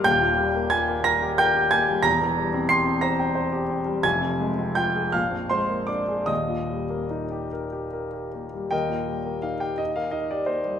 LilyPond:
<<
  \new Staff \with { instrumentName = "Grand piano" } { \time 6/8 \key ees \major \tempo 4. = 57 <g'' g'''>4 <aes'' aes'''>8 <bes'' bes'''>8 <g'' g'''>8 <aes'' aes'''>8 | <bes'' bes'''>4 <c''' c''''>8 <bes'' bes'''>8 r4 | <aes'' aes'''>4 <g'' g'''>8 <f'' f'''>8 <c'' c'''>8 <d'' d'''>8 | <ees'' ees'''>4. r4. |
<bes' ees'' g''>4 f''16 g''16 ees''16 f''16 ees''16 d''16 c''8 | }
  \new Staff \with { instrumentName = "Grand piano" } { \time 6/8 \key ees \major <ees,, ees,>16 bes,16 g16 bes16 g'16 bes16 bes'16 g'16 bes'16 g'16 bes16 g16 | <e,, e,>16 e16 g16 c'16 g'16 c'16 c''16 g''16 c''16 g'16 c'16 g16 | <f,, f,>16 c16 aes16 c'16 f'16 aes'16 bes,,16 f,16 aes16 bes16 d'16 aes'16 | <ees,, ees,>16 bes,16 g16 bes16 ees'16 g'16 bes'16 g'16 bes'16 g'16 bes16 g16 |
ees,16 bes,16 g16 bes16 ees'16 g'16 ees'16 bes16 ees'16 g'16 bes16 g16 | }
>>